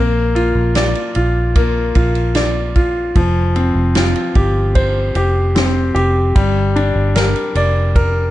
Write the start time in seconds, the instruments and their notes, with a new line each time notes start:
Already playing: fingered electric bass A#1, grand piano A#3
0.35 grand piano F4, ride
0.55 fingered electric bass A#1
0.75 grand piano D5, snare, ride
0.95 ride
1.15 fingered electric bass A#1, grand piano F4, ride
1.55 grand piano A#3, kick, ride
1.95 fingered electric bass A#1, grand piano F4, kick, ride
2.15 ride
2.35 grand piano D5, snare, ride
2.75 grand piano F4, kick, ride
3.15 fingered electric bass F1, grand piano F3, kick, ride
3.56 grand piano C4, ride
3.75 fingered electric bass F1
3.95 grand piano F4, snare, ride
4.16 ride
4.35 fingered electric bass G1, grand piano G4, kick, ride
4.75 grand piano C5, kick, ride
5.15 fingered electric bass F1, grand piano G4, ride
5.55 grand piano C4, snare, ride
5.95 fingered electric bass F1, grand piano G4, ride
6.35 fingered electric bass G1, grand piano G3, kick, ride
6.76 grand piano D4, ride
6.96 fingered electric bass G1
7.15 grand piano A#4, snare, ride
7.36 ride
7.55 fingered electric bass F1, grand piano D5, ride
7.96 grand piano A#4, kick, ride